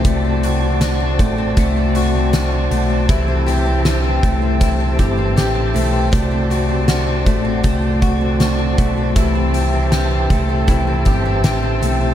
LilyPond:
<<
  \new Staff \with { instrumentName = "Tonewheel organ" } { \time 4/4 \key c \lydian \tempo 4 = 79 << { a''1~ | a''1 | a''1 | a''1 | } \\ { <fis' c'' d''>1 | <g' e''>1 | <fis' d''>1 | <g' e''>1 | } >> }
  \new Staff \with { instrumentName = "Twelve-string acoustic guitar" } { \time 4/4 \key c \lydian a16 c'16 fis'16 c'16 fis'16 c'16 a16 c'16 a16 c'16 fis'16 c'16 fis'16 c'16 a16 c'16 | e16 c'16 g'16 c'16 g'16 c'16 a16 c'16 e16 c'16 g'16 c'16 g'16 c'16 a16 c'16 | a16 c'16 fis'16 c'16 fis'16 c'16 a16 c'16 a16 c'16 fis'16 c'16 fis'16 c'16 a16 c'16 | e16 c'16 g'16 c'16 g'16 c'16 a16 c'16 e16 c'16 g'16 c'16 g'16 c'16 a16 c'16 | }
  \new Staff \with { instrumentName = "Picked electric bass" } { \clef bass \time 4/4 \key c \lydian c,4. a,,8 c,4. b,,8 | c,4. c,4 g,,8 a,,8 b,,8 | c,4. a,,8 c,4. b,,8 | c,4. c,4 g,,8 a,,8 b,,8 | }
  \new DrumStaff \with { instrumentName = "Drums" } \drummode { \time 4/4 <hh bd>8 hh8 <hh sn>8 <hh bd>8 <hh bd>8 hh8 <hh sn>8 hh8 | <hh bd>8 hh8 <hh sn>8 <hh bd>8 <hh bd>8 <hh bd>8 <hh sn>8 hh8 | <hh bd>8 hh8 <hh sn>8 <hh bd>8 <hh bd>8 <hh bd>8 <hh sn>8 <hh bd>8 | <hh bd>8 hh8 <hh sn>8 <hh bd>8 <hh bd>8 <hh bd>8 <hh sn>8 hh8 | }
>>